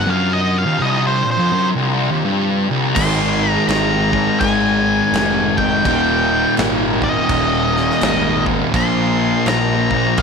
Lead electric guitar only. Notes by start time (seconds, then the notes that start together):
0.10 F5
0.33 D#5
0.58 F5
0.82 D#5
1.07 C5
1.31 C5
2.95 C6
3.51 A#5
3.68 A#5
4.40 G#5
5.57 G5
5.86 G5
7.04 D#5
8.76 C6
9.48 A#5
10.19 G5